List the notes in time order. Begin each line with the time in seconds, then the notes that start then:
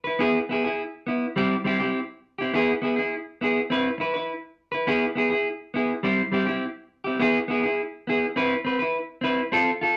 0.04 E4 B4
0.19 B3 E4 G#4
0.49 B3 E4 G#4
0.64 E4 G#4
1.07 B3 E4
1.36 G3 C4 E4 G4
1.64 G3 C4 E4 G4
1.80 C4 E4 G4
2.38 C4 E4 G4
2.53 B3 E4 G#4
2.82 B3 E4 G#4
2.96 E4 G#4
3.41 B3 E4 G#4
3.70 C4 E4 B4
3.98 E4 B4, muted clean electric guitar stroke
4.14 E4 B4
4.72 E4 B4
4.87 B3 E4 G#4
5.15 B3 E4 G#4
5.30 E4 G#4
5.74 B3 E4 G#4
6.03 G3 C4 E4, muted clean electric guitar stroke
6.32 G3 C4 E4 G4
6.47 C4 E4 G4
7.04 C4 E4 G4
7.20 B3 E4 G#4
7.48 B3 E4 G#4
7.63 E4 G#4
8.07 B3 E4 G#4
8.36 C4 E4 B4
8.65 C4 B4
8.79 E4 B4
9.21 C4 E4 B4
9.52 C4 F4 A4
9.81 F4 A4